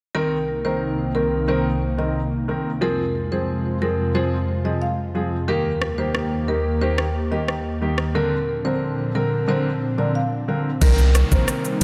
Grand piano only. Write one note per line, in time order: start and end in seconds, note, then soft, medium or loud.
0.15 0.35 D#3 medium
0.15 0.36 C4 medium
0.15 0.36 A#4 loud
0.65 1.11 D#3 medium
0.65 1.11 C4 medium
0.65 1.11 A#4 medium
1.15 1.46 D#3 medium
1.15 1.46 C4 medium
1.15 1.46 A#4 medium
1.48 1.69 D#3 medium
1.48 1.69 C4 medium
1.48 1.69 A#4 medium
1.98 2.19 D#3 medium
1.98 2.19 C4 medium
1.98 2.19 A#4 medium
2.48 2.69 D#3 medium
2.48 2.69 C4 medium
2.48 2.69 A#4 medium
2.81 3.02 F3 medium
2.81 3.02 C4 medium
2.81 3.02 G#4 loud
3.31 3.78 F3 medium
3.31 3.78 C4 medium
3.31 3.78 G#4 medium
3.81 4.12 F3 medium
3.81 4.12 C4 medium
3.81 4.13 G#4 medium
4.15 4.35 F3 medium
4.15 4.35 C4 medium
4.15 4.36 G#4 medium
4.64 4.85 F3 medium
4.64 4.85 C4 medium
4.64 4.86 G#4 medium
5.15 5.35 F3 medium
5.15 5.35 C4 medium
5.15 5.36 G#4 medium
5.48 5.69 D#3 medium
5.48 5.69 A#3 medium
5.48 5.69 G4 loud
5.98 6.44 D#3 medium
5.98 6.44 A#3 medium
5.98 6.44 G4 medium
6.48 6.79 D#3 medium
6.48 6.79 A#3 medium
6.48 6.79 G4 medium
6.81 7.02 D#3 medium
6.81 7.02 A#3 medium
6.81 7.02 G4 medium
7.31 7.52 D#3 medium
7.31 7.52 A#3 medium
7.31 7.52 G4 medium
7.81 8.02 D#3 medium
7.81 8.02 A#3 medium
7.81 8.03 G4 medium
8.15 8.35 D3 medium
8.15 8.36 C4 medium
8.15 8.36 A#4 loud
8.65 9.11 D3 medium
8.65 9.11 C4 medium
8.65 9.11 A#4 medium
9.15 9.45 D3 medium
9.15 9.46 C4 medium
9.15 9.46 A#4 medium
9.48 9.69 D3 medium
9.48 9.69 C4 medium
9.48 9.69 A#4 loud
9.98 10.19 D3 medium
9.98 10.19 C4 medium
9.98 10.19 A#4 medium
10.48 10.69 D3 medium
10.48 10.69 C4 medium
10.48 10.69 A#4 medium
10.81 11.02 D#3 loud
10.81 11.02 C4 medium
10.81 11.02 A#4 loud
11.31 11.78 D#3 medium
11.31 11.78 C4 medium
11.31 11.78 A#4 medium